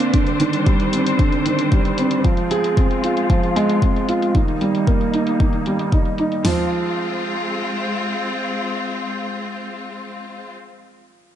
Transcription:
Already playing: upright piano D3 F3 A#3 C4 D4, string section A#3 C4 D4 F4 C5
0.00 closed hi-hat
0.14 upright piano D3, string section G3 C5, kick, closed hi-hat
0.27 closed hi-hat
0.40 upright piano D#3, closed hi-hat
0.53 closed hi-hat
0.66 upright piano G3, kick, closed hi-hat
0.80 closed hi-hat
0.93 upright piano C4, closed hi-hat
1.07 closed hi-hat
1.19 upright piano D3, kick, closed hi-hat
1.32 closed hi-hat
1.46 upright piano D#3, closed hi-hat
1.59 closed hi-hat
1.72 upright piano G3, kick, closed hi-hat
1.85 closed hi-hat
1.98 upright piano C4, closed hi-hat
2.11 closed hi-hat
2.24 upright piano F3, string section G#3 F4, kick, closed hi-hat
2.37 closed hi-hat
2.51 upright piano G#4, closed hi-hat
2.64 closed hi-hat
2.77 upright piano C4, kick, closed hi-hat
2.91 closed hi-hat
3.04 upright piano F4, closed hi-hat
3.17 closed hi-hat
3.30 upright piano F3, kick, closed hi-hat
3.43 closed hi-hat
3.56 upright piano G#3, closed hi-hat
3.70 closed hi-hat
3.82 upright piano C4, kick, closed hi-hat
3.96 closed hi-hat
4.09 upright piano F4, closed hi-hat
4.22 closed hi-hat
4.35 upright piano D#3, string section G3 A#3 D#4, kick, closed hi-hat
4.48 closed hi-hat
4.61 upright piano G3, closed hi-hat
4.75 closed hi-hat
4.87 upright piano A#3, kick, closed hi-hat
5.01 closed hi-hat
5.14 upright piano D#4, closed hi-hat
5.27 closed hi-hat
5.40 upright piano D#3, kick, closed hi-hat
5.53 closed hi-hat
5.66 upright piano G3, closed hi-hat
5.79 closed hi-hat
5.92 upright piano D#4, kick, closed hi-hat
6.05 closed hi-hat
6.18 upright piano D#4, closed hi-hat
6.32 closed hi-hat
6.45 upright piano F3, string section G#3 C4 F4, snare, floor tom, open hi-hat

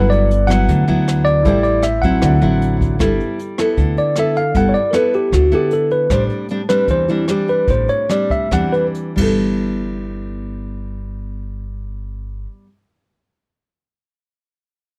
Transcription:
Already playing: upright bass G1, nylon-string guitar G2 F#3 B3 E4, grand piano E4 A4 B4 F#5, tine electric piano B4
0.10 tine electric piano D5, closed hi-hat
0.31 closed hi-hat
0.47 nylon-string guitar F#3 B3 E4, tine electric piano F#5, cross-stick, closed hi-hat
0.68 upright bass D2, nylon-string guitar D3, kick, closed hi-hat
0.88 upright bass D2, nylon-string guitar F#3 B3 E4, closed hi-hat
1.08 cross-stick, closed hi-hat
1.25 tine electric piano D5, closed hi-hat
1.43 upright bass A1, nylon-string guitar A2 G3 C4 E4, grand piano E4 A4, kick, closed hi-hat
1.47 grand piano C5 G5
1.63 tine electric piano D5, closed hi-hat
1.83 tine electric piano E5, cross-stick, closed hi-hat
2.02 nylon-string guitar F#3 C4 E4, tine electric piano F#5, kick, closed hi-hat
2.20 upright bass D2, nylon-string guitar D3, grand piano E4 C5 D5, kick, cross-stick, closed hi-hat
2.26 grand piano F#5
2.42 upright bass A1, nylon-string guitar F#3 C4 E4, closed hi-hat
2.62 closed hi-hat
2.81 kick, closed hi-hat
2.99 upright bass G1, nylon-string guitar G3 B3 E4 A4, kick, cross-stick, closed hi-hat
3.20 closed hi-hat
3.39 closed hi-hat
3.58 nylon-string guitar B3 E4 A4, cross-stick, closed hi-hat
3.77 upright bass D2, nylon-string guitar D3, kick, closed hi-hat
3.97 tine electric piano D5, closed hi-hat
4.16 nylon-string guitar B3 E4 A4, tine electric piano E5, cross-stick, closed hi-hat
4.36 tine electric piano F5, closed hi-hat
4.55 upright bass G1, nylon-string guitar G3 B3 E4 A4, tine electric piano F#5, kick, closed hi-hat
4.69 tine electric piano C#5
4.74 tine electric piano D5, closed hi-hat
4.91 nylon-string guitar B3 E4 A4, tine electric piano A#4, cross-stick, closed hi-hat
4.95 tine electric piano B4
5.14 tine electric piano G4, closed hi-hat
5.32 upright bass D2, nylon-string guitar D3, tine electric piano F#4, kick, cross-stick, closed hi-hat
5.52 nylon-string guitar B3 E4 A4, tine electric piano G4, closed hi-hat
5.71 tine electric piano A4, closed hi-hat
5.91 tine electric piano B4, closed hi-hat
6.10 upright bass A1, nylon-string guitar A2 G3 C4 D4, tine electric piano C5, kick, cross-stick, closed hi-hat
6.29 closed hi-hat
6.49 nylon-string guitar G3 C4 D4, closed hi-hat
6.69 nylon-string guitar G3 C4 D4, tine electric piano B4, cross-stick
6.88 upright bass E2, nylon-string guitar E3, tine electric piano C5, kick, closed hi-hat
7.08 nylon-string guitar G3 C4 D4, tine electric piano E4, closed hi-hat
7.28 nylon-string guitar G3 C4 D4, tine electric piano G4, cross-stick, closed hi-hat
7.48 tine electric piano B4, closed hi-hat
7.68 upright bass A1, nylon-string guitar A2, tine electric piano C5, kick, closed hi-hat
7.88 tine electric piano C#5, closed hi-hat
8.09 nylon-string guitar G3 C4 D4, tine electric piano D5, cross-stick, closed hi-hat
8.30 tine electric piano E5, kick, closed hi-hat
8.51 upright bass E2, nylon-string guitar E3 G3 C4 D4, tine electric piano F#5, kick, cross-stick, closed hi-hat
8.72 tine electric piano B4, closed hi-hat
8.95 closed hi-hat
9.16 upright bass G1, nylon-string guitar G3 B3 E4, kick, crash
9.22 nylon-string guitar A4

